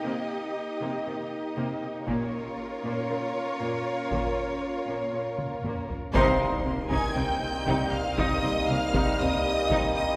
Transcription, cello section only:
\new Staff \with { instrumentName = "Cello section" } { \clef bass \time 4/4 \key c \phrygian \tempo 4 = 118 c8 r4 c8 c8 r8 c8 r8 | bes,8 r4 bes,8 bes,8 r8 bes,8 r8 | bes,8 r4 bes,8 bes,8 r8 bes,8 r8 | c8 c8 c8 c8 c8 r8 c8 r8 |
c8 c8 c8 c8 c8 r8 c8 r8 | }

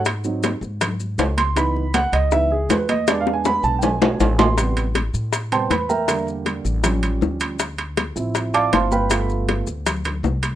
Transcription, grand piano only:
<<
  \new Staff \with { instrumentName = "Grand piano" } { \time 4/4 \key e \major \tempo 4 = 159 r2. r8 bis''8 | b''4 fis''8 dis''8 e''8 gis'8 b'8 dis''8 | \tuplet 3/2 { d''8 eis''8 gis''8 } b''8 a''8 <g'' gis''>4. bis''8~ | \key a \minor bis''8 r2 <c'' g'' a'' c'''>8 <b' b''>8 <bes' e'' g'' bes''>8~ |
<bes' e'' g'' bes''>8 r2. r8 | r2 r8 <d'' f'' a'' d'''>8 <c'' f'' a'' c'''>8 <b' f'' g'' b''>8~ | <b' f'' g'' b''>8 r2. r8 | }
  \new Staff \with { instrumentName = "Grand piano" } { \time 4/4 \key e \major r8 <fis bis dis'>8 r2. | <e b dis'>8 r4. <e b dis'>8 r4. | <gis b d'>1 | \key a \minor <c g b>8 r2 <c g b>8 r4 |
<d g bes>2 <f g cis'>2 | r4. <f c' e'>2~ <f c' e'>8 | <a b f'>4. r2 r8 | }
>>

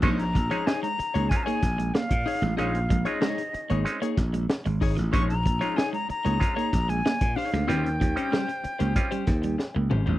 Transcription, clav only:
\new Staff \with { instrumentName = "Clav" } { \time 4/4 \key bes \dorian \tempo 4 = 94 <aes c' des' ees'>16 r8 <aes c' des' ees'>16 r8 <des' f'>16 <des' ees'>16 <aes c' des' f'>16 r16 <des' ees'>16 r4 r16 | <aes c' des' ees'>16 r8 <aes c' des' f'>16 r8 <des' ees'>16 <des' ees'>16 <aes c' des' ees'>16 r16 <des' ees'>16 r8. <des' ees'>16 r16 | <aes c' des' ees'>16 r8 <aes c' des' f'>16 r8 <des' ees'>16 <des' f'>16 <aes c' des' f'>16 r16 <des' ees'>16 r8. <des' ees'>16 r16 | <g c' des' f'>16 r8 <g c' des' ees'>16 r8 <des' ees'>16 <des' f'>16 <g c' des' f'>16 r16 <des' f'>16 r8. <des' f'>16 r16 | }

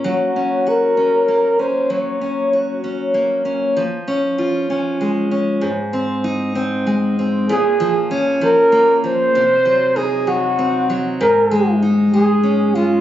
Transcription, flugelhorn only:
\new Staff \with { instrumentName = "Flugelhorn" } { \time 6/8 \key bes \minor \tempo 4. = 65 ges'4 bes'4. c''8 | des''4. r4. | r2. | r2. |
aes'4 r8 bes'4 c''8~ | c''4 aes'8 ges'4 r8 | bes'4 r8 aes'4 f'8 | }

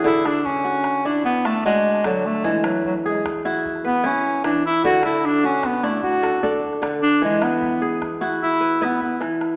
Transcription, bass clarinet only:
\new Staff \with { instrumentName = "Bass clarinet" } { \time 12/8 \key d \lydian \tempo 4. = 101 e'8 d'8 cis'4. d'8 b8 a8 gis4 fis8 a8 | gis8 fis8 fis8 gis8 r4. b8 cis'4 d'8 e'8 | fis'8 e'8 d'8 cis'8 b8 a8 fis'4. r4 d'8 | gis8 b4. r4 e'4 b8 b8 r4 | }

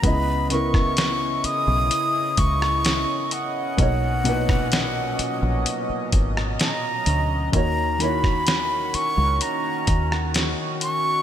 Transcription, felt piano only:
\new Staff \with { instrumentName = "Felt piano" } { \time 4/4 \key cis \dorian \tempo 4 = 64 <cis b e' dis''>8 <cis b e' ais'>4. r2 | <b, ais dis' cis''>8 <ais, b, dis' b'>4. r2 | <dis ais fis' cis''>8 <dis ais e' fis' cis''>4. r2 | }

